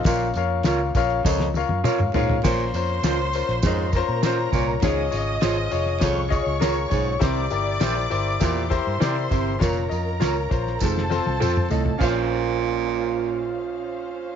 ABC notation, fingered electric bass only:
X:1
M:4/4
L:1/16
Q:1/4=100
K:Bbm
V:1 name="Fingered electric bass" clef=bass
B,,,2 F,,2 D,,2 B,,,2 D,,3 G,, z A,, B,,2 | B,,,2 F,,2 D,,3 B,,, F,,3 B,,3 C,,2 | D,,2 A,,,2 A,,,2 F,,,2 C,,3 D,,3 _C,,2 | C,,2 =G,,,2 B,,,2 G,,,2 =E,,3 =G,, C,2 G,,,2 |
F,,,2 F,,2 D,,2 B,,,2 F,,,3 C,, F,,2 C,,2 | B,,,16 |]